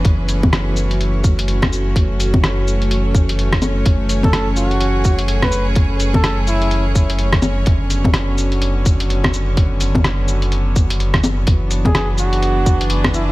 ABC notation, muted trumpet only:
X:1
M:4/4
L:1/16
Q:"Swing 16ths" 1/4=126
K:F#m
V:1 name="Muted trumpet"
z16 | z16 | z3 A2 z F6 z B2 z | z3 A2 z E3 z6 z |
z16 | z16 | z3 G2 z F6 z2 E E |]